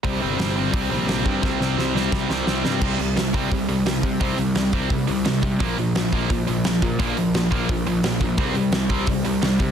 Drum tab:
CC |--------|--------|x-------|--------|
HH |o-o-o-o-|--------|-ooooooo|oooooooo|
SD |--o---o-|oooooooo|--o---o-|--o---o-|
BD |o---o--o|o---o---|o--oo--o|o--oo--o|

CC |--------|--------|--------|
HH |oooooooo|oooooooo|oooooooo|
SD |--o---o-|--o---o-|--o---o-|
BD |o--oo--o|o--oo--o|o--oo--o|